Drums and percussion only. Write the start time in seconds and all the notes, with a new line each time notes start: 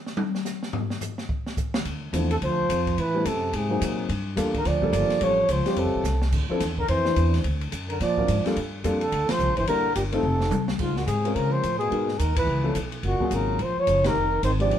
0.06 snare
0.17 high tom
0.35 snare
0.45 snare, hi-hat pedal
0.63 snare
0.73 floor tom
0.90 snare
1.01 floor tom, hi-hat pedal
1.18 snare
1.29 kick
1.46 snare
1.57 kick, hi-hat pedal
1.74 snare
1.85 kick, ride
2.13 kick, hi-hat pedal, ride
2.31 ride
2.41 kick, ride
2.69 kick, hi-hat pedal, ride
2.87 kick, ride
2.97 kick, ride
3.25 kick, hi-hat pedal, ride
3.53 kick, ride
3.81 kick, hi-hat pedal, ride
4.09 kick, ride
4.37 kick, hi-hat pedal, ride
4.54 kick, ride
4.65 kick, snare, ride
4.82 kick
4.93 hi-hat pedal, ride
5.10 snare, ride
5.21 kick, ride
5.49 kick, hi-hat pedal, ride
5.66 snare, ride
5.76 kick, ride
6.04 snare, hi-hat pedal
6.22 snare
6.32 kick, crash
6.60 kick, snare, hi-hat pedal, ride
6.78 kick
6.88 kick, ride
7.05 snare
7.16 kick, hi-hat pedal, ride
7.34 snare, ride
7.44 kick, ride
7.61 ride
7.72 kick, hi-hat pedal, ride
7.90 ride
8.00 kick, snare, ride
8.17 kick
8.28 kick, hi-hat pedal, ride
8.46 snare, ride
8.56 kick, ride
8.84 kick, hi-hat pedal, ride
9.01 ride
9.12 kick, ride
9.29 snare, ride
9.39 hi-hat pedal
9.57 ride
9.67 kick, ride
9.96 kick, hi-hat pedal, ride
10.12 ride
10.41 snare
10.51 hi-hat pedal, high tom
10.68 snare
10.79 kick, crash
10.96 snare
11.07 kick, hi-hat pedal, ride
11.25 ride
11.35 kick, ride
11.63 kick, hi-hat pedal, ride
11.81 ride
11.91 kick, ride
12.08 snare
12.19 kick, hi-hat pedal, ride
12.36 kick, ride
12.75 kick, hi-hat pedal, ride
12.92 ride
13.03 kick, ride
13.20 kick
13.31 hi-hat pedal, ride
13.59 kick, ride
13.87 kick, hi-hat pedal, ride
14.04 snare, ride
14.43 kick, hi-hat pedal, ride
14.60 ride
14.71 kick, ride